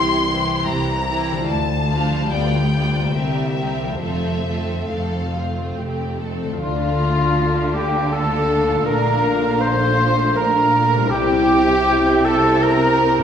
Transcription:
Already playing: cello section C2, double bass section C2, harp C3 E4 G4 C5, viola section E3 E4, violin section G4 C5 C6
0.30 viola section E3 E4, violin section G4 C5
0.68 double bass section C2, cello section C2, violin section A#5
1.08 viola section E3 E4, violin section G4 C5
1.31 harp D3
1.35 harp D4
1.40 harp F4
1.44 double bass section D2, harp F5
1.48 cello section D2, violin section A5
1.89 viola section F3 D4, violin section F4 F5
2.12 harp D3
2.17 harp B3
2.21 harp G4
2.26 harp F5
2.30 double bass section D2, cello section D2, viola section G3 B3, violin section F4 D5 G5
2.71 viola section G3 B3, violin section F4 D5
2.96 harp C3
3.01 harp A#3
3.05 harp G4
3.09 harp C5, violin section E5
3.14 cello section C2, double bass section C2, viola section G3 C4, violin section G4 A#4
3.57 viola section G3 C4, violin section G4 A#4
3.83 harp F3
3.87 harp A3
3.92 harp A4
3.96 harp C5
4.01 double bass section F1, cello section F2, viola section A3 C4, violin section F4 A4 E5
4.46 viola section A3 C4, violin section F4 A4
4.89 double bass section F1, cello section F2, violin section A4 F5
5.33 viola section A3 C4, violin section F4
5.76 double bass section F1, cello section F2, violin section G4
6.19 viola section A3 C4, violin section A4
6.43 harp D3
6.48 harp A3
6.52 harp F4
6.57 cello section D3, french horn section A3 D4, clarinet F4, cor anglais F4, harp D5
6.61 double bass section D2, viola section A3 D4, trumpet section F4, violin section F4 F5, flute F5
7.75 clarinet G4, violin section G4, cor anglais G4, trumpet section G4, flute G5
8.12 french horn section A3 D4, clarinet A4, violin section A4, trumpet section A4, cor anglais A4, flute A5
8.69 harp A#2
8.73 harp A3
8.78 harp F4
8.82 french horn section A3 D4, cor anglais A#4, clarinet A#4, trumpet section A#4, harp D5
8.87 double bass section A#1, cello section A#2, violin section A#4, flute A#5
9.61 clarinet C5, trumpet section C5, cor anglais C5, violin section C5, flute C6
10.36 french horn section A3 D4, cor anglais A#4, clarinet A#4, trumpet section A#4, violin section A#4, flute A#5
10.93 harp C3
10.97 harp G3
11.02 harp E4
11.06 harp C5, violin section E5, flute G5
11.10 double bass section C2, cello section C3, french horn section G3 E4, viola section C4 G4, cor anglais G4, clarinet G4, trumpet section G4, violin section G4
12.25 clarinet A4, cor anglais A4, trumpet section A4, violin section A4, flute A5
12.62 violin section A#4, clarinet A#4, cor anglais A#4, trumpet section A#4, flute A#5
13.18 harp A2

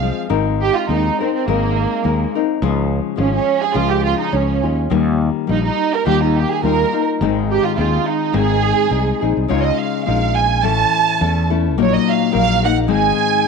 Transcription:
Already playing: fretless electric bass C2, violin section F5
0.02 nylon-string guitar F3 G#3 C4 G#4
0.29 fretless electric bass G#1, nylon-string guitar G#3 C4 D#4 A#4
0.63 violin section G4
0.75 violin section F4
0.89 fretless electric bass D#2, nylon-string guitar G#3 C4 D#4 A#4, violin section D#4
1.20 violin section C4, nylon-string guitar C4 D#4 A#4
1.36 violin section C4
1.48 fretless electric bass G#1, nylon-string guitar G#3 C4 D#4 A#4, violin section A#3
2.04 fretless electric bass D#2, nylon-string guitar G#3 C4 D#4 A#4
2.35 nylon-string guitar C4 D#4 A#4
2.62 fretless electric bass C#2, nylon-string guitar C#3 F3 G#3 C#4 F4
3.16 fretless electric bass G#1, nylon-string guitar F3 G#3 C#4 F4
3.20 violin section C#4
3.36 violin section C#4
3.62 violin section G#4
3.74 fretless electric bass C#2, nylon-string guitar C#3 F3 G#3 C#4 F4, violin section F4
3.91 violin section G4
4.05 violin section F4
4.19 violin section D#4
4.32 fretless electric bass C#2, nylon-string guitar F3 G#3 C#4 F4, violin section C#4
4.63 fretless electric bass D#2, nylon-string guitar G#3 C#4 F4
4.90 fretless electric bass D#2, nylon-string guitar D#3 G3 A#3 D#4 F4
5.47 fretless electric bass A#1, nylon-string guitar G3 A#3 D#4 F4, violin section D#4
5.66 violin section D#4
5.94 violin section A#4
6.05 fretless electric bass D#2, nylon-string guitar D#3 G3 A#3 D#4 F4, violin section G4
6.23 violin section D#4
6.38 violin section G4
6.51 violin section G#4
6.63 fretless electric bass D#2, nylon-string guitar G3 A#3 D#4 F4, violin section A#4
6.93 nylon-string guitar A#3 D#4 F4
7.21 fretless electric bass G#1, nylon-string guitar G#2 D#3 G#3 C4 D#4 G#4
7.52 violin section G4
7.64 violin section F4
7.78 fretless electric bass D#2, nylon-string guitar G#3 C4 D#4 G#4, violin section F4
8.07 violin section D#4
8.33 fretless electric bass G#1, nylon-string guitar G#2 D#3 G#3 C4 D#4 G#4, violin section G#4
8.89 fretless electric bass C2, nylon-string guitar G#3 C4 D#4 G#4
9.21 fretless electric bass A#1, nylon-string guitar G#3 C4 D#4 G#4
9.37 fretless electric bass C2
9.48 fretless electric bass C#2, nylon-string guitar C#3 G#3 C#4 D#4 F4, violin section C#5
9.64 violin section D#5
9.79 violin section F5
10.05 fretless electric bass A#1, nylon-string guitar G#3 C#4 D#4 F4, violin section F5
10.36 violin section G#5
10.62 fretless electric bass A1, nylon-string guitar A2 E3 A3 C#4 E4 A4, violin section A5
11.21 fretless electric bass E2, nylon-string guitar A3 C#4 E4 A4
11.50 nylon-string guitar A3 C#4 E4 A4
11.78 fretless electric bass A#1, nylon-string guitar A#2 F#3 A#3 D#4 A#4
11.82 violin section C#5
11.96 violin section D#5
12.10 violin section F5
12.32 fretless electric bass A#1, nylon-string guitar F#3 A#3 D#4 A#4
12.36 violin section F5
12.63 nylon-string guitar A#3 D#4 A#4, violin section F#5
12.88 fretless electric bass G#1, nylon-string guitar G#2 D#3 G#3 C4 D#4 G#4, violin section G#5

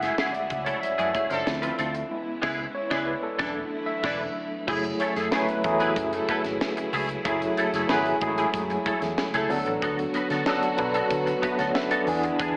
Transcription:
Already playing: string section C#3 F#3 E4 G#4, tine electric piano G#3 A3 E4 F#5
0.00 clean electric guitar A3 E4 G#4, tine electric piano E5, snare, closed hi-hat
0.18 clean electric guitar A3 E4 G#4, snare
0.32 tine electric piano D5, muted clean electric guitar stroke, closed hi-hat
0.50 fingered electric bass C#2, muted clean electric guitar stroke, kick, closed hi-hat
0.64 clean electric guitar A3 E4 A4, tine electric piano C#5, closed hi-hat
0.81 tine electric piano E5, muted clean electric guitar stroke, muted fingered electric bass stroke, closed hi-hat
0.98 fingered electric bass F#2, horn section E3 C#4 A4, clean electric guitar A3 E4 G#4, closed hi-hat
1.14 clean electric guitar A3 E4 G#4, kick, closed hi-hat
1.30 fingered electric bass F#1, horn section F3 D4 A4, muted clean electric guitar stroke, snare, closed hi-hat
1.45 fingered electric bass D2, string section D3 F3 A3 C4 D4, tine electric piano F3 C4 E4, muted clean electric guitar stroke, snare
1.62 clean electric guitar C4 F4 B4, closed hi-hat
1.78 fingered electric bass D2, clean electric guitar C4 F4 A4, closed hi-hat
1.95 muted clean electric guitar stroke, closed hi-hat
2.10 string section C#3 E3 G#3 B3 E4, tine electric piano G#3 B3 E4
2.42 fingered electric bass C#2, horn section G#3 E4 B4, clean electric guitar B3 E4 G#4, kick, snare, crash
2.75 tine electric piano C#5
2.90 fingered electric bass C#2, horn section G#3 E4 B4, clean electric guitar B3 E4 G#4, tine electric piano D5, kick, snare
3.06 tine electric piano B4
3.23 tine electric piano A4
3.38 fingered electric bass E1, string section D3 A3 E4, horn section E3 D4 A4, tine electric piano F#3 A3 D4, clean electric guitar D4 E4 A4, kick, snare
3.86 tine electric piano E5
4.04 fingered electric bass E1, horn section E3 D4 B4, clean electric guitar D4 E4 A4, kick, snare, crash
4.67 fingered electric bass F#1, string section C#3 F#3 A3 E4 G#4, tine electric piano F#3 A3 E4 G#4, clean electric guitar A3 E4 G#4, kick, crash
4.84 closed hi-hat
5.00 clean electric guitar A3 E4 A4, horn section C#4 C#5, closed hi-hat
5.16 fingered electric bass F#2, horn section A3 A4, clean electric guitar A3 E4 G#4, snare, closed hi-hat
5.31 tine electric piano F#3 A3 E4 B4, clean electric guitar A3 E4 G#4, horn section C#4 C#5, snare
5.48 horn section B3 B4, muted clean electric guitar stroke, closed hi-hat
5.64 fingered electric bass E2, tine electric piano F#3 A3 E4 G#4, muted clean electric guitar stroke, kick, closed hi-hat
5.80 clean electric guitar A3 E4 G#4, horn section B3 B4, closed hi-hat
5.96 fingered electric bass F#2, kick, closed hi-hat
6.13 horn section A3 A4, muted clean electric guitar stroke, closed hi-hat
6.29 clean electric guitar A3 E4 A4, horn section B3 B4, kick, closed hi-hat
6.44 fingered electric bass G#1, muted clean electric guitar stroke, snare, closed hi-hat
6.61 snare
6.77 muted clean electric guitar stroke, closed hi-hat
6.93 fingered electric bass C#2, clean electric guitar A3 E4 G#4, open hi-hat
7.09 muted clean electric guitar stroke, closed hi-hat
7.25 fingered electric bass F#1, tine electric piano F#3 A3 E4 G#4, clean electric guitar A3 E4 G#4, kick, closed hi-hat
7.42 closed hi-hat
7.57 clean electric guitar A3 E4 A4, closed hi-hat
7.73 fingered electric bass F#1, horn section A3 A4, clean electric guitar A3 E4 G#4, snare, closed hi-hat
7.88 fingered electric bass G#1, tine electric piano F#3 A3 E4 G#4, clean electric guitar A3 E4 G#4, horn section B3 B4, snare
8.06 muted clean electric guitar stroke, closed hi-hat
8.20 fingered electric bass A1, tine electric piano F#3 G#3 E4 G#4, muted clean electric guitar stroke, kick, closed hi-hat
8.27 tine electric piano A3
8.38 clean electric guitar A3 E4 G#4, closed hi-hat
8.54 fingered electric bass F#2, kick, closed hi-hat
8.70 muted clean electric guitar stroke, closed hi-hat
8.86 clean electric guitar A3 E4 A4, kick, closed hi-hat
9.02 fingered electric bass E2, muted clean electric guitar stroke, snare, closed hi-hat
9.18 muted clean electric guitar stroke, snare
9.34 fingered electric bass C#2, horn section A3 A4, clean electric guitar A3 E4 G#4, closed hi-hat
9.49 fingered electric bass D2, string section D3 B3 F#4, tine electric piano F#3 B3 D4 A4, muted clean electric guitar stroke, open hi-hat
9.66 fingered electric bass A1, muted clean electric guitar stroke, closed hi-hat
9.82 fingered electric bass D2, clean electric guitar B3 F#4 A4, kick, closed hi-hat
9.99 closed hi-hat
10.14 clean electric guitar B3 F#4 B4, closed hi-hat
10.30 fingered electric bass D3, clean electric guitar B3 F#4 A4, snare, closed hi-hat
10.46 tine electric piano F#3 B3 D4 A4, clean electric guitar B3 F#4 A4, snare
10.63 muted clean electric guitar stroke, closed hi-hat
10.77 fingered electric bass B2, tine electric piano F#3 B3 D4 B4, muted clean electric guitar stroke, kick, closed hi-hat
10.94 clean electric guitar B3 F#4 A4, closed hi-hat
11.10 fingered electric bass D3, muted clean electric guitar stroke, kick, closed hi-hat
11.26 muted clean electric guitar stroke, closed hi-hat
11.42 clean electric guitar B3 F#4 B4, tine electric piano E5 A5, kick, closed hi-hat
11.58 fingered electric bass D2, clean electric guitar B3 F#4 A4, tine electric piano C#5 F#5, snare, closed hi-hat
11.74 tine electric piano B4 E5, muted clean electric guitar stroke, snare
11.91 clean electric guitar B3 F#4 A4, tine electric piano A4 D5, closed hi-hat
12.07 fingered electric bass E2, tine electric piano E3 B3 D4 G#4, string section E3 E4 G#4, muted clean electric guitar stroke, open hi-hat
12.23 muted clean electric guitar stroke, closed hi-hat
12.39 fingered electric bass E2, clean electric guitar B3 D4 G#4, kick, closed hi-hat

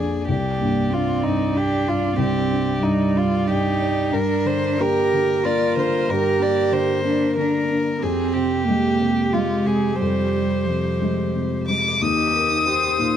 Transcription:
Already playing: felt piano A#1 F2, violin G#4, viola D5
0.00 felt piano D4
0.27 felt piano C2, violin G4, viola D5
0.58 felt piano G2, cello A#3
0.89 cello C4, felt piano D4, violin F4
1.23 felt piano G2, violin D#4
1.55 cello D4, felt piano D4, violin G4
1.86 felt piano G2, violin F4
2.17 felt piano C2, cello C4, violin G4
2.51 felt piano D4
2.82 felt piano G2, cello G3, violin D#4
3.16 felt piano D4, violin F4
3.47 felt piano G2, cello D#4, violin G4
3.82 felt piano D5
4.11 felt piano G2, cello D4, viola A#4, violin A#4
4.45 felt piano D3, violin C5
4.80 felt piano A#3, cello G4, violin A#4
5.13 felt piano D3
5.43 felt piano A#3, cello F4, violin D5
5.76 felt piano D3, violin C5
6.08 felt piano G2, cello G4, violin A#4
6.39 felt piano A#3, violin D5
6.71 felt piano D3, violin C5
7.05 felt piano A#3, cello D4
7.37 felt piano D3, cello D4, violin A#4
7.70 felt piano A#3
8.00 felt piano F2, cello C4, viola G4, violin G#4
8.34 felt piano C3, violin G4
8.65 felt piano G#3, cello A#3
9.00 felt piano C3
9.32 cello G#3, felt piano G#3, violin F4
9.65 felt piano C3, violin G#4
9.97 felt piano F2, cello G3
10.02 violin C5
10.34 felt piano G3
10.65 felt piano C3, cello F3
11.02 felt piano G#3
11.35 felt piano C3
11.68 felt piano G#3, violin D6
12.01 felt piano D#2, cello D#4, vibraphone D#4, viola G4, violin D#6
12.18 vibraphone D#5
12.34 vibraphone G4, felt piano A#4
12.50 vibraphone D#4
12.66 felt piano G4, cello G4, viola C5
12.83 vibraphone G4
12.99 felt piano A#2, vibraphone D#4, cello F4

